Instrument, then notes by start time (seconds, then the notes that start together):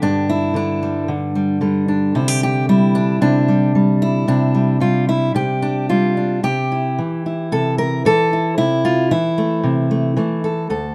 steel-string acoustic guitar
Already playing: D3 G4
0.02 G2 D4
0.29 E4
0.54 D3 D4
0.83 G3
1.08 D3
1.35 G3
1.61 D3 G3
1.88 D4
2.15 C3 E4
2.28 G4
2.43 G4
2.69 G3 E4
2.95 D4
3.21 C3 D4
3.48 G3
3.75 G3
4.02 E4
4.28 C3 D4
4.54 G3
4.80 G3 F4
5.09 E4
5.35 C3 G4
5.62 D4
5.89 G3 F4
6.17 D4
6.43 C3 G4
6.72 E4
6.98 E3
7.26 E4
7.52 C3 A4
7.78 A#4
8.05 E3 A4
8.33 E4
8.58 C3 E4
8.85 F4
9.11 E3 E4
9.38 A3
9.63 C3
9.91 A3
10.17 E3 A3
10.44 A4
10.70 D2 A4